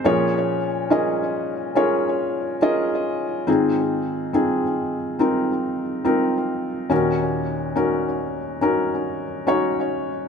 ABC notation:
X:1
M:4/4
L:1/8
Q:1/4=70
K:Bbdor
V:1 name="Felt piano"
[DFABd]2 [DFABe]2 [DFABd]2 [DFABe]2 | [K:Abmix] [CEFA]2 [CEFA]2 [CEFB]2 [CEFB]2 | [DEGB]2 [DEGB]2 [DEGB]2 [DEGd]2 |]
V:2 name="Felt piano" clef=bass
[B,,F,]8 | [K:Abmix] [A,,E,]8 | [E,,B,,]8 |]